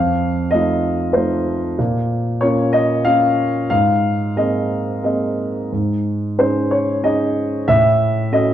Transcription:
0.00 1.75 F2 medium
0.00 0.54 F5 medium
0.51 1.14 A3 soft
0.51 1.14 D#4 soft
0.51 1.15 F4 soft
0.51 1.16 D#5 medium
1.13 1.77 A3 soft
1.13 1.77 D#4 soft
1.13 1.78 F4 soft
1.13 1.58 C5 medium
1.79 3.67 A#2 medium
2.41 3.03 A#3 soft
2.41 3.03 C#4 soft
2.41 3.04 F4 soft
2.41 2.74 C#5 medium
2.73 3.03 D#5 medium
3.05 3.68 A#3 soft
3.05 3.68 C#4 soft
3.05 3.69 F4 soft
3.05 3.68 F5 medium
3.70 5.68 G#2 medium
3.70 4.38 F5 medium
4.36 5.01 A#3 soft
4.36 5.02 C4 soft
4.36 5.02 G#4 soft
4.36 5.03 D#5 medium
5.03 5.70 A#3 soft
5.03 5.70 C4 soft
5.03 5.70 G#4 soft
5.03 5.52 D#5 medium
5.72 7.65 G#2 soft
6.38 7.01 C#4 soft
6.38 7.02 D#4 soft
6.38 7.02 G#4 soft
6.38 6.72 C5 medium
6.71 7.04 C#5 medium
7.03 7.66 C#4 soft
7.03 7.67 D#4 soft
7.03 7.67 G#4 soft
7.03 7.71 D#5 medium
7.68 8.54 A2 medium
7.68 8.34 E5 medium
8.32 8.54 C#4 soft
8.32 8.54 F#4 soft
8.32 8.54 A4 soft
8.32 8.54 D#5 medium

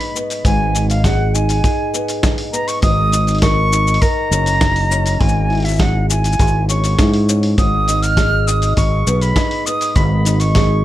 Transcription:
0.00 0.44 G#2 medium
0.00 0.14 B3 medium
0.00 0.74 D#4 medium
0.00 1.03 G#4 medium
0.00 0.17 B5 loud
0.00 open hi-hat medium
0.15 1.92 B3 medium
0.15 cabasa medium
0.30 open hi-hat soft
0.30 cabasa soft
0.45 1.60 G#1 loud
0.45 2.81 G#2 medium
0.45 0.87 G#5 loud
0.45 kick loud
0.45 open hi-hat soft
0.45 cabasa soft
0.75 1.34 D#4 medium
0.75 open hi-hat soft
0.75 cabasa medium
0.90 1.06 F5 medium
0.90 open hi-hat soft
0.90 cabasa soft
1.04 1.63 G#4 medium
1.04 1.36 F#5 medium
1.04 kick loud
1.04 snare loud
1.04 open hi-hat medium
1.04 cabasa soft
1.34 2.23 D#4 medium
1.34 2.26 G#5 medium
1.34 cabasa medium
1.49 open hi-hat soft
1.49 cabasa soft
1.64 2.89 G#4 medium
1.64 kick loud
1.64 open hi-hat medium
1.64 cabasa soft
1.93 2.52 B3 medium
1.93 cabasa medium
2.08 open hi-hat soft
2.08 cabasa soft
2.23 3.12 D#4 medium
2.23 kick loud
2.23 snare loud
2.23 open hi-hat medium
2.23 cabasa soft
2.38 open hi-hat soft
2.53 2.89 B3 medium
2.53 2.69 A#5 loud
2.53 cabasa medium
2.68 2.82 C#6 loud
2.68 open hi-hat soft
2.68 cabasa soft
2.82 3.98 G#1 loud
2.82 5.19 G#2 medium
2.82 3.38 D#6 loud
2.82 kick loud
2.82 open hi-hat medium
2.82 cabasa soft
3.12 3.71 D#4 medium
3.12 open hi-hat soft
3.12 cabasa medium
3.27 open hi-hat soft
3.27 cabasa soft
3.31 open hi-hat soft
3.35 open hi-hat soft
3.38 snare loud
3.38 open hi-hat soft
3.42 4.00 A#4 medium
3.42 4.03 C#6 loud
3.42 kick loud
3.42 open hi-hat medium
3.42 cabasa soft
3.72 4.60 D#4 medium
3.72 cabasa medium
3.87 cabasa soft
3.94 open hi-hat soft
4.02 5.26 A#4 medium
4.02 5.21 A#5 loud
4.02 kick loud
4.02 open hi-hat soft
4.02 cabasa soft
4.31 5.16 F#1 loud
4.31 4.90 C#4 medium
4.31 cabasa medium
4.46 open hi-hat soft
4.46 cabasa soft
4.61 kick loud
4.61 snare loud
4.61 open hi-hat medium
4.61 cabasa soft
4.76 open hi-hat medium
4.91 6.68 C#4 medium
4.91 cabasa medium
5.06 open hi-hat soft
5.06 cabasa soft
5.20 6.35 G#1 loud
5.20 7.57 G#2 medium
5.20 5.66 G#5 loud
5.20 kick loud
5.20 open hi-hat soft
5.29 cabasa soft
5.50 6.08 E4 medium
5.50 open hi-hat soft
5.53 open hi-hat soft
5.55 open hi-hat soft
5.57 open hi-hat soft
5.60 open hi-hat soft
5.62 5.82 E5 medium
5.62 open hi-hat soft
5.65 open hi-hat soft
5.65 cabasa soft
5.68 cabasa soft
5.71 cabasa soft
5.73 cabasa soft
5.76 cabasa soft
5.78 6.39 G#4 medium
5.78 6.09 F#5 medium
5.78 kick loud
5.78 snare loud
5.78 open hi-hat medium
5.78 cabasa soft
6.09 6.97 E4 medium
6.09 6.65 G#5 loud
6.09 cabasa medium
6.24 open hi-hat soft
6.24 cabasa soft
6.33 cabasa soft
6.39 6.95 G#1 loud
6.39 8.17 G#4 medium
6.39 kick loud
6.39 open hi-hat medium
6.39 cabasa soft
6.47 cabasa soft
6.69 7.27 C#4 medium
6.69 7.27 C#6 medium
6.69 open hi-hat soft
6.69 cabasa medium
6.84 open hi-hat soft
6.84 cabasa soft
6.98 7.54 G#2 medium
6.98 7.64 E4 medium
6.98 kick loud
6.98 snare medium
6.98 open hi-hat medium
6.98 cabasa soft
7.14 open hi-hat medium
7.28 7.64 C#4 medium
7.28 cabasa medium
7.43 open hi-hat soft
7.58 8.73 G#1 medium
7.58 9.95 G#2 medium
7.58 8.04 D#6 loud
7.58 kick loud
7.58 open hi-hat medium
7.58 cabasa soft
7.88 8.47 D#4 medium
7.88 open hi-hat soft
7.88 cabasa medium
8.03 8.49 F6 loud
8.03 open hi-hat soft
8.03 cabasa soft
8.17 8.76 G#4 medium
8.17 kick loud
8.17 snare loud
8.17 open hi-hat medium
8.17 cabasa soft
8.47 9.36 D#4 medium
8.47 8.76 D#6 loud
8.47 cabasa medium
8.62 open hi-hat soft
8.62 cabasa soft
8.77 9.02 G#1 medium
8.77 10.54 G#4 medium
8.77 9.23 C#6 loud
8.77 kick loud
8.77 open hi-hat medium
8.77 cabasa soft
9.07 9.32 B1 loud
9.07 9.65 B3 medium
9.07 cabasa medium
9.21 9.68 B5 loud
9.21 open hi-hat soft
9.21 cabasa soft
9.36 10.25 D#4 medium
9.36 kick loud
9.36 snare medium
9.36 open hi-hat medium
9.36 cabasa soft
9.51 open hi-hat soft
9.66 10.85 B3 medium
9.66 9.97 D#6 loud
9.66 cabasa medium
9.81 open hi-hat soft
9.81 cabasa soft
9.96 10.85 G#1 loud
9.96 10.85 G#2 medium
9.96 10.42 B5 medium
9.96 kick loud
9.96 open hi-hat medium
9.96 cabasa soft
10.25 10.84 D#4 medium
10.25 open hi-hat soft
10.25 cabasa medium
10.40 10.85 C#6 medium
10.40 open hi-hat soft
10.40 cabasa soft
10.55 10.85 G#4 medium
10.55 kick loud
10.55 snare loud
10.55 open hi-hat medium
10.55 cabasa soft

